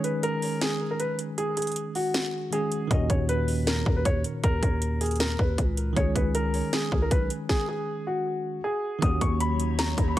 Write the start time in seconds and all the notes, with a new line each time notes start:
Already playing: D#3 G#3 C#4 G#4
0.04 B4, closed hi-hat
0.23 A#4, closed hi-hat
0.42 open hi-hat
0.61 G#4, snare, closed hi-hat
0.91 A#4
1.00 B4, closed hi-hat
1.19 closed hi-hat
1.38 G#4, closed hi-hat
1.57 G#4, closed hi-hat
1.62 closed hi-hat
1.67 closed hi-hat
1.72 closed hi-hat
1.76 closed hi-hat
1.95 F#4, open hi-hat
2.14 snare, closed hi-hat
2.51 D#3 G#3 C#4 G#4, closed hi-hat
2.72 closed hi-hat
2.87 D#2 A#2 D#3 D#5, kick, closed hi-hat
2.92 C#4 F#4
3.10 D#2 C#5, kick, closed hi-hat
3.29 B4, closed hi-hat
3.48 open hi-hat
3.67 A#4, snare, closed hi-hat
3.86 D#2, kick
3.96 B4
4.05 D#2 C#5, kick, closed hi-hat
4.24 closed hi-hat
4.44 D#2 A#4, kick, closed hi-hat
4.63 D#2 A#4, kick, closed hi-hat
4.82 closed hi-hat
5.01 G#4, closed hi-hat, open hi-hat
5.06 closed hi-hat
5.11 closed hi-hat
5.16 closed hi-hat
5.20 A#4, snare, closed hi-hat
5.39 D#2 B4, kick
5.58 C#2, kick, closed hi-hat
5.77 closed hi-hat
5.93 C#2 D#3 G#3 C#5, kick, closed hi-hat
5.98 C#4 G#4
6.16 C#2 B4, kick, closed hi-hat
6.35 A#4, closed hi-hat
6.54 open hi-hat
6.73 G#4, snare, closed hi-hat
6.92 C#2, kick
7.02 A#4
7.11 B1 B4, kick, closed hi-hat
7.30 closed hi-hat
7.49 G#4, kick, snare
7.69 G#4
8.07 F#4
8.64 G#4
8.99 D#2 D#3 F#3 A#3 D#4 C#5 D#6, kick, closed hi-hat
9.03 C#4 F#4
9.21 D#2 C#6, kick, closed hi-hat
9.40 B5, closed hi-hat
9.60 closed hi-hat
9.79 A#5, snare, closed hi-hat
9.98 D#2, kick, closed hi-hat
10.08 B5